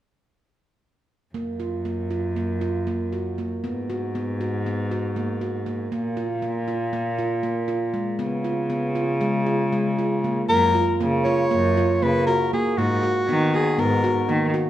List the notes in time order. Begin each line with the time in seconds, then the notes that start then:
1.34 F#2 A#3
1.60 F4
1.85 A#3
2.11 F4
2.36 A#3
2.61 F4
2.87 A#3
3.13 F#4
3.38 A#3
3.64 G#2 B3
3.90 F#4
4.15 B3
4.41 F#4
4.66 B3
4.91 F#4
5.16 A#3
5.41 F#4
5.66 A#3
5.91 A#2 A#3
6.17 F4
6.42 A#3
6.68 F4
6.93 A#3
7.19 F4
7.43 A#3
7.68 F4
7.94 G#3
8.19 C#3 B3
8.44 F4
8.70 B3
8.95 F4
9.21 G#3
9.46 F4
9.72 G#3
9.99 F4
10.24 A#3
10.49 F#2 A#3 A#4
10.75 F4
11.01 C#3 A#3
11.24 F4 C#5
11.51 F#2 A#3
11.77 F4
12.02 C#3 A#3 B4
12.27 F#4 A#4
12.53 A#3 G#4
12.78 G#2 A#3 F#4
13.03 F#4
13.28 D#3 B3
13.54 F#4 G#4
13.78 G#2 B3 A#4
14.04 F#4
14.29 D#3 A#3
14.54 F#4